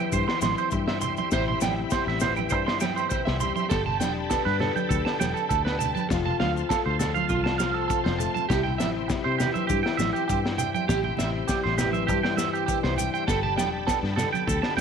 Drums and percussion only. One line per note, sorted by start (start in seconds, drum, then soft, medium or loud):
0.12 kick medium
0.12 maracas medium
0.29 snare medium
0.41 snare medium
0.41 high conga medium
0.41 maracas medium
0.58 maracas soft
0.71 kick medium
0.71 maracas medium
0.88 snare medium
1.01 low conga medium
1.01 maracas loud
1.17 high conga medium
1.17 maracas soft
1.31 kick medium
1.31 snare medium
1.31 maracas medium
1.48 low conga medium
1.61 snare medium
1.61 high conga medium
1.61 maracas medium
1.90 kick medium
1.90 snare medium
1.90 maracas medium
2.08 snare soft
2.20 snare medium
2.20 low conga medium
2.20 maracas medium
2.36 high conga medium
2.36 maracas soft
2.50 kick medium
2.50 maracas medium
2.68 snare medium
2.80 snare medium
2.80 high conga medium
2.80 maracas medium
2.97 maracas soft
3.10 kick loud
3.10 maracas medium
3.27 snare medium
3.40 low conga medium
3.40 maracas medium
3.56 high conga medium
3.56 maracas soft
3.70 kick loud
3.70 snare medium
3.70 maracas medium
3.86 low conga medium
4.00 snare medium
4.00 high conga medium
4.00 maracas medium
4.31 kick medium
4.31 snare medium
4.31 maracas medium
4.46 snare soft
4.60 snare medium
4.60 low conga medium
4.76 high conga medium
4.76 maracas soft
4.91 kick medium
4.91 maracas medium
5.06 snare medium
5.20 snare medium
5.20 high conga medium
5.20 maracas medium
5.37 maracas soft
5.51 kick medium
5.51 maracas medium
5.66 snare medium
5.80 low conga medium
5.80 maracas medium
5.96 high conga medium
5.96 maracas soft
6.10 kick loud
6.10 snare medium
6.10 maracas medium
6.26 low conga medium
6.40 snare medium
6.40 high conga medium
6.57 maracas soft
6.70 kick medium
6.70 snare medium
6.70 maracas medium
7.00 snare medium
7.00 low conga medium
7.00 maracas medium
7.15 high conga medium
7.15 maracas soft
7.29 kick medium
7.29 maracas medium
7.46 snare medium
7.60 snare medium
7.60 high conga medium
7.60 maracas medium
7.90 kick loud
7.90 maracas medium
8.06 snare medium
8.06 high conga medium
8.20 low conga medium
8.20 maracas medium
8.36 high conga medium
8.36 maracas soft
8.50 kick loud
8.50 snare medium
8.50 maracas medium
8.66 low conga medium
8.80 snare medium
8.80 high conga medium
8.80 maracas medium
9.10 kick medium
9.10 snare medium
9.10 maracas medium
9.40 snare medium
9.40 low conga medium
9.40 maracas medium
9.55 high conga medium
9.55 maracas soft
9.69 kick medium
9.69 maracas medium
9.86 snare medium
9.99 snare medium
9.99 high conga medium
9.99 maracas medium
10.16 maracas soft
10.30 kick medium
10.30 maracas medium
10.46 snare medium
10.58 low conga medium
10.58 maracas loud
10.75 high conga medium
10.75 maracas soft
10.89 kick loud
10.89 snare medium
10.89 maracas medium
11.04 low conga medium
11.17 snare medium
11.17 high conga medium
11.17 maracas loud
11.48 kick medium
11.48 snare medium
11.48 maracas medium
11.65 snare soft
11.77 snare medium
11.77 low conga medium
11.77 maracas loud
11.93 high conga medium
11.93 maracas soft
12.09 kick medium
12.09 maracas medium
12.25 snare medium
12.37 snare medium
12.37 high conga medium
12.37 maracas loud
12.55 maracas soft
12.68 kick medium
12.68 maracas medium
12.84 snare medium
12.97 low conga medium
12.97 maracas loud
13.15 maracas soft
13.28 kick loud
13.28 snare medium
13.28 maracas medium
13.43 low conga medium
13.58 snare medium
13.58 high conga medium
13.58 maracas medium
13.87 kick medium
13.87 snare medium
13.87 maracas medium
14.04 snare soft
14.17 snare medium
14.17 low conga medium
14.17 maracas medium
14.34 high conga medium
14.34 maracas soft
14.48 kick medium
14.48 maracas medium
14.63 snare medium
14.77 snare medium